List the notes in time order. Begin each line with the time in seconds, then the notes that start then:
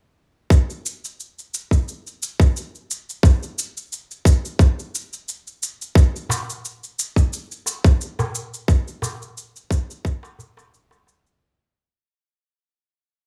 0.50 kick, cabasa
0.70 cabasa
0.86 cabasa
1.05 cabasa
1.20 cabasa
1.39 cabasa
1.54 cabasa
1.71 kick, cabasa
1.88 cabasa
2.07 cabasa
2.23 cabasa
2.40 kick, cabasa
2.57 cabasa
2.75 cabasa
2.91 cabasa
3.09 cabasa
3.23 kick, cabasa
3.43 cabasa
3.59 cabasa
3.77 cabasa
3.92 cabasa
4.11 cabasa
4.25 kick, cabasa
4.45 cabasa
4.59 kick, cabasa
4.79 cabasa
4.95 cabasa
5.13 cabasa
5.28 cabasa
5.47 cabasa
5.63 cabasa
5.82 cabasa
5.95 kick, cabasa
6.16 cabasa
6.29 darbuka tek, darbuka dum, cabasa
6.50 cabasa
6.65 cabasa
6.84 cabasa
6.99 cabasa
7.16 kick, cabasa
7.33 cabasa
7.52 cabasa
7.66 darbuka tek, cabasa
7.84 kick, cabasa
8.01 cabasa
8.19 darbuka ka, darbuka dum, cabasa
8.35 cabasa
8.54 cabasa
8.68 kick, cabasa
8.88 cabasa
9.02 darbuka tek, darbuka dum, cabasa
9.22 cabasa
9.38 cabasa
9.56 cabasa
9.71 kick, cabasa
9.91 cabasa
10.05 kick, cabasa
10.23 darbuka tek, cabasa
10.39 darbuka dum, cabasa
10.57 darbuka ka, darbuka tek, cabasa
10.74 cabasa
10.91 darbuka ka, darbuka tek, cabasa
11.07 darbuka tek, cabasa
11.27 cabasa